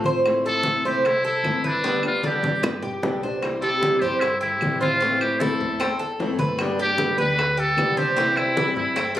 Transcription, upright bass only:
Already playing: A1
0.85 C2
1.43 G1
2.43 G2
3.02 C2
4.02 G2
4.61 A2
5.60 E2
6.20 G2
7.18 D2
7.77 C2
8.76 G2

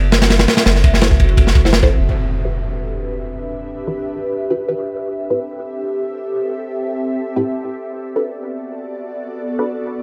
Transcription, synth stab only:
1.02 E4 F#4 A4 C5
1.65 E4 F#4 A4 C5
1.83 E4 F#4 A4 C5
2.45 E3 D4 F#4 G4 B4
3.87 E3 D4 F#4 G4 B4
4.50 E3 D4 F#4 G4 B4
4.68 E3 D4 F#4 G4 B4
5.30 A2 C4 E4 G4 B4
7.36 A2 C4 E4 G4 B4
8.16 D4 F#4 A4 B4
9.59 D4 F#4 A4 B4

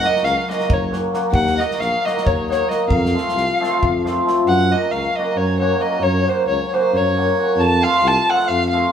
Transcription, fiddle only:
0.06 D#5
0.24 F5
0.51 D#5
0.73 C#5
1.35 F#5
1.59 D#5
1.80 F5
2.05 D#5
2.26 C#5
2.50 C#5
2.69 D#5
2.88 F5
4.48 F#5
4.73 D#5
4.92 F5
5.16 D#5
5.37 C#5
5.59 C#5
5.82 D#5
6.03 C#5
6.30 C5
6.48 C#5
6.74 C5
6.97 C#5
7.60 A5
7.84 F5
8.07 A5
8.30 F#5
8.48 F5
8.69 F5

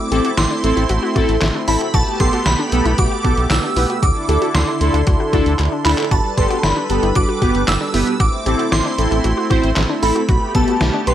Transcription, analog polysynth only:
0.11 C4 E4 A4
0.64 C4 E4 A4
1.16 C4 E4 A4
1.68 C4 E4 A4
2.20 B3 G4 A4
2.72 B3 G4 A4
3.25 B3 G4 A4
3.77 B3 G4 B4
4.29 D4 E4 A4
4.81 D4 E4 A4
5.33 D4 E4 A4
5.85 D4 E4 A4
6.38 B3 G4 A4
6.90 B3 G4 A4
7.42 B3 G4 B4
7.94 B3 G4 B4
8.46 C4 E4 A4
8.98 C4 E4 A4
9.50 C4 E4 C5
10.03 C4 E4 A4
10.55 B3 G4 A4
11.07 B3 G4 B4

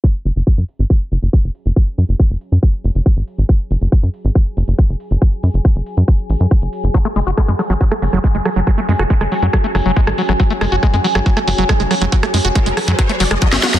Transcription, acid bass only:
6.94 F#3
7.05 A3
7.16 G#3
7.27 F#4
7.37 G#3
7.48 G#3
7.59 F#3
7.70 F#3
7.81 F#3
7.91 A3
8.02 F#3
8.13 F#3
8.24 G#3
8.35 G#3
8.45 F#3
8.56 F#3
8.67 F#3
8.78 A3
8.89 G#3
8.99 F#4
9.10 G#3
9.21 G#3
9.32 F#3
9.43 F#3
9.53 F#3
9.64 A3
9.75 F#3
9.86 F#3
9.96 G#3
10.07 G#3
10.18 F#3
10.29 F#3
10.40 F#3
10.50 A3
10.61 G#3
10.72 F#4
10.83 G#3
10.94 G#3
11.04 F#3
11.15 F#3
11.26 F#3
11.37 A3
11.48 F#3
11.58 F#3
11.69 G#3
11.80 G#3
11.91 F#3
12.01 F#3
12.12 F#3
12.23 A3
12.34 G#3
12.45 F#4
12.55 G#3
12.66 G#3
12.77 F#3
12.88 F#3
12.99 F#3
13.09 A3
13.20 F#3
13.31 G#3
13.42 F#3
13.53 C#4
13.63 F#4
13.74 F#3

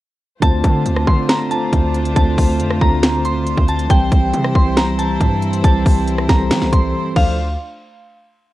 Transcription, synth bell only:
0.42 A5
1.07 C6
1.29 A#5
1.51 A5
2.16 A5
2.82 A#5
3.25 C6
3.69 A5
3.90 G5
4.55 C6
4.77 A#5
4.99 A5
5.64 A5
6.29 A#5
6.72 C6
7.16 F5

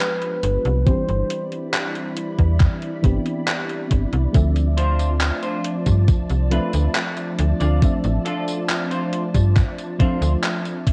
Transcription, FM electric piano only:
Already playing: F3 G#3 B3 D4 G4
0.85 E3 G3 C4 D4 G4
3.02 E3 B3 C4 D4 G4
4.32 F3 A3 C4 D4 E5
6.50 F3 A3 C4 D4 E5
7.81 F3 A3 C4 D4 E5
9.98 F3 A3 C4 D4 E5

